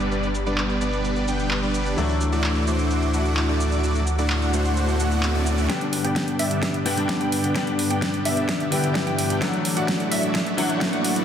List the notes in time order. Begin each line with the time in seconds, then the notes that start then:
Already playing: G1 D3 G3 B3 D4 G4 D5 B5, downlifter
0.00 cabasa
0.11 G3 B3 D4 B4 D5, cabasa
0.23 cabasa
0.35 cabasa
0.46 G3 B3 D4 B4 D5, cabasa
0.58 clap, cabasa
0.70 cabasa
0.81 G3 B3 D4 B4 D5, cabasa
0.93 cabasa
1.05 cabasa
1.16 cabasa
1.28 G3 B3 D4 B4 G5, cabasa
1.39 cabasa
1.51 clap, cabasa
1.63 G3 B3 D4 B4 D5
1.74 cabasa
1.86 cabasa
1.96 D2 E3 F#3 A3 D4 E4 F#4 D5 E5 D6, riser, cabasa
2.09 cabasa
2.21 cabasa
2.32 A3 D4 E4 F#4 D5, cabasa
2.44 clap, cabasa
2.56 cabasa
2.67 A3 D4 E4 F#4 C5, cabasa
2.79 cabasa
2.91 cabasa
3.02 cabasa
3.14 A3 D4 E4 F#4 F#5, cabasa
3.25 cabasa
3.37 clap, cabasa
3.49 A3 D4 E4 F#4 D5
3.60 cabasa
3.72 cabasa
3.84 A3 D4 E4 F#4 D5 F#5, cabasa
3.95 cabasa
4.07 cabasa
4.18 A3 D4 E4 F#4 D5, cabasa
4.30 clap, cabasa
4.42 cabasa
4.53 A3 D4 E4 F#4 C5, cabasa
4.65 cabasa
4.77 cabasa
4.88 cabasa
5.00 A3 D4 E4 F#4 F#5, cabasa
5.12 cabasa
5.23 clap, cabasa
5.35 A3 D4 E4 F#4 D5
5.46 cabasa
5.58 cabasa
5.68 G2 D3 G3 B3 D4 G4 D5 G5, kick, snare, closed hi-hat, riser
5.81 closed hi-hat
5.93 open hi-hat
6.04 B3 D4 G4 D5 G5, closed hi-hat
6.16 kick, snare, closed hi-hat
6.28 closed hi-hat
6.39 B3 D4 G4 D5 E5, open hi-hat
6.51 closed hi-hat
6.63 kick, snare, closed hi-hat
6.74 closed hi-hat
6.85 D3 G3 B3 D4 G4 D5 G5, open hi-hat
6.96 D3 G3 B3 D4, closed hi-hat
7.09 kick, snare, closed hi-hat
7.21 B3 D4 G4 D5 G5, closed hi-hat
7.32 open hi-hat
7.44 closed hi-hat
7.54 D3 G3 B3 D4 G4 D5 G5, kick, snare, closed hi-hat
7.67 closed hi-hat
7.79 open hi-hat
7.90 B3 D4 G4 D5 G5, closed hi-hat
8.02 kick, snare, closed hi-hat
8.14 closed hi-hat
8.25 B3 D4 G4 D5 E5, open hi-hat
8.37 closed hi-hat
8.49 kick, snare, closed hi-hat
8.60 closed hi-hat
8.71 D3 G3 B3 D4 E4 G4 D5 G5, open hi-hat
8.84 closed hi-hat
8.95 kick, snare, closed hi-hat
9.07 B3 D4 G4 D5 G5, closed hi-hat
9.19 open hi-hat
9.30 closed hi-hat
9.40 E3 F#3 A3 D4 E4 F#4 D5 F#5, kick, snare, closed hi-hat
9.54 closed hi-hat
9.65 open hi-hat
9.77 A3 E4 F#4 D5 F#5, closed hi-hat
9.88 kick, snare, closed hi-hat
10.00 closed hi-hat
10.11 A3 E4 F#4 D5 E5, open hi-hat
10.23 closed hi-hat
10.35 kick, snare, closed hi-hat
10.47 closed hi-hat
10.57 E3 F#3 A3 D4 E4 F#4 D5 F#5, open hi-hat
10.68 E3 F#3 A3 D4, closed hi-hat
10.81 kick, snare, closed hi-hat
10.93 A3 E4 F#4 D5 F#5, closed hi-hat
11.04 open hi-hat
11.16 closed hi-hat